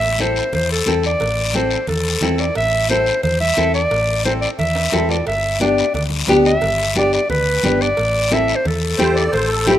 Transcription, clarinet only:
Already playing: E5
0.21 C5
0.54 C5
0.72 A4
1.06 D5
1.56 C5
1.89 A4
2.40 D5
2.57 E5
2.90 C5
3.23 C5
3.40 E5
3.74 D5
4.25 C5
4.41 D5
4.59 E5
5.10 D5
5.27 E5
5.61 D5
5.95 D5
6.46 E5
6.98 D5
7.14 D5
7.30 B4
7.82 D5
8.33 E5
8.55 C5
8.67 A4

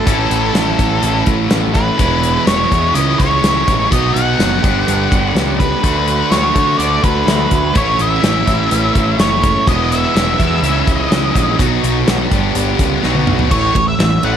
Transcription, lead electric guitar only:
Already playing: A4
1.74 B4
2.47 C#5
2.94 D#5
3.18 C#5
3.93 D#5
4.14 F#5
5.59 B4
6.32 C#5
6.78 D5
7.04 B4
7.77 C#5
8.01 E5
9.20 C#5
9.69 D#5
9.92 E5
10.94 D#5
13.51 C#5
13.88 E5
14.25 F#5

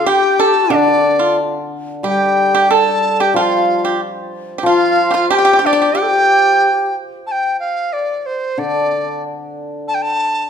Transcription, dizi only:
Already playing: F5
0.09 G5
0.41 A5
0.75 D5
2.08 G5
2.74 A5
3.21 G5
3.37 G5
3.41 F5
4.66 F5
5.31 G5 A5
5.66 D5
5.99 G5
7.27 A5
7.32 G5
7.60 F5
7.93 D5
8.26 C5
8.59 D5
9.88 A5
9.94 G5
10.02 A5

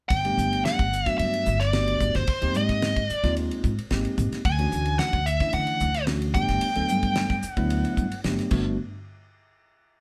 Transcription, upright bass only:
0.10 G1
0.37 G1
0.79 G1
1.19 G2
1.46 G1
2.00 G1
2.15 G1
2.42 D#2
2.55 G#2
3.10 muted upright bass stroke
3.24 D#2
3.64 G#2
3.91 G#1
4.18 G#1
4.32 muted upright bass stroke
4.45 D2
4.72 D2
5.13 D2
5.53 D3
5.81 D2
6.35 G1
6.49 G1
6.62 muted upright bass stroke
6.76 D2
6.90 G2
7.43 muted upright bass stroke
7.57 D2
7.97 G2
8.25 G1
8.52 G1

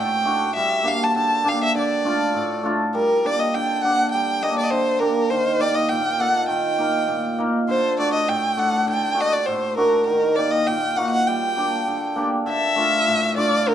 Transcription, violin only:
Already playing: G5
0.56 E5
0.88 F5
1.04 A5
1.18 A5
1.48 F5
1.64 E5
1.79 D5
2.95 A#4
3.26 D5
3.39 D#5
3.54 G5
3.76 G5
3.82 F#5
4.11 G5
4.43 D#5
4.58 D5
4.63 D5 D#5
4.70 C5
4.99 A#4
5.30 C5
5.61 D5
5.75 D#5
5.89 G5
6.21 F#5
6.49 G5
7.70 C5
8.00 D5
8.14 D#5
8.29 G5
8.59 F#5
8.90 G5
9.21 D#5
9.32 D5
9.46 C5
9.78 A#4
10.07 A#4
10.35 D5
10.51 D#5
10.67 G5
10.96 F#5
11.10 F#5
11.27 G5
12.50 E5
13.37 D5
13.68 A#4

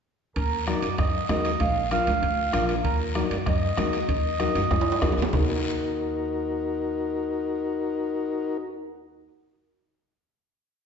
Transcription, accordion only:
0.36 A#4
0.67 D5
0.99 D#5
1.30 D#5
1.60 F5
1.91 F5
2.85 A#4
3.16 D5
3.31 D5
3.47 D#5

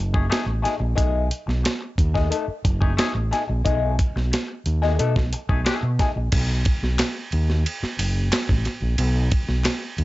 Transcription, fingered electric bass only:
Already playing: F#1
0.30 muted fingered electric bass stroke
0.46 A1
0.80 A#1
0.98 B1
1.48 B1
1.98 D#2
2.48 muted fingered electric bass stroke
2.65 F#1
2.98 muted fingered electric bass stroke
3.15 A1
3.49 A#1
3.66 B1
4.16 B1
4.66 D#2
5.00 B2
5.16 B1
5.49 B1
5.83 B2
6.16 A#1
6.32 B1
6.83 B1
7.33 D#2
7.83 muted fingered electric bass stroke
7.99 F#1
8.32 muted fingered electric bass stroke
8.49 A1
8.82 A#1
8.99 B1
9.49 B1
9.98 D#2

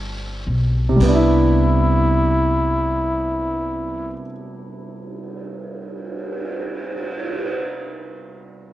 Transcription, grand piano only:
Already playing: G3 C4 D4 E4
0.89 C3
0.96 G3
1.03 B3
1.08 D4
1.15 E4

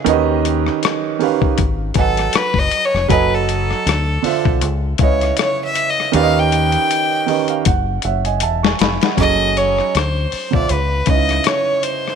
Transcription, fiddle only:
1.98 A4
2.36 B4
2.59 D#5
2.85 C#5
3.10 B4
3.35 A4
5.01 C#5
5.39 C#5
5.64 E5
5.90 D#5
6.16 F5
6.39 G5
9.20 D#5
9.57 C#5
9.96 C5
10.54 D5
10.72 B4
11.09 D#5
11.47 C#5
11.84 C5

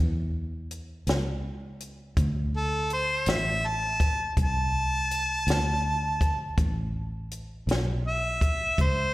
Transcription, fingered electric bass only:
Already playing: E2
1.07 C#2
2.17 D2
3.27 A1
4.37 C2
5.47 D2
6.57 A1
7.67 B1
8.79 C#2

